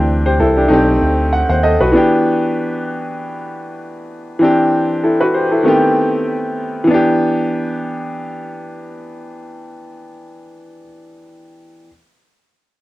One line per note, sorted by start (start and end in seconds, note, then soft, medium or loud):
0.00 0.40 D2 medium
0.00 0.67 E3 medium
0.00 0.68 C4 medium
0.00 0.57 D4 medium
0.00 0.26 G4 medium
0.26 0.39 G4 medium
0.26 0.39 C5 medium
0.40 0.66 C2 loud
0.40 0.56 E4 medium
0.40 0.56 A4 medium
0.57 0.86 D4 medium
0.57 0.72 G4 medium
0.68 0.97 B1 loud
0.68 1.91 A3 medium
0.68 1.92 C4 medium
0.68 1.91 D#4 medium
0.73 1.33 G4 medium
1.02 1.42 D2 medium
1.33 1.48 F#5 medium
1.49 1.76 D#2 medium
1.49 1.63 C5 medium
1.49 1.63 F#5 medium
1.63 1.80 A4 medium
1.63 1.80 D#5 medium
1.80 1.92 B1 medium
1.80 2.10 F#4 medium
1.80 2.10 B4 medium
1.92 4.37 E3 medium
1.92 4.37 B3 medium
1.92 4.38 D4 medium
1.97 4.39 G4 medium
4.39 5.62 E3 medium
4.39 5.62 C4 medium
4.39 5.63 D4 medium
4.44 5.04 G4 medium
5.04 5.20 E4 soft
5.04 5.20 A4 medium
5.20 5.34 F#4 medium
5.20 5.34 B4 medium
5.34 5.51 G4 medium
5.34 5.50 C5 medium
5.51 5.81 E4 soft
5.51 5.81 A4 medium
5.63 6.85 D#3 medium
5.63 6.86 A3 medium
5.63 6.86 B3 medium
5.63 6.87 C4 medium
5.68 6.88 G4 medium
6.84 10.75 E3 medium
6.84 10.78 B3 medium
6.91 10.82 D4 medium
6.91 10.85 G4 medium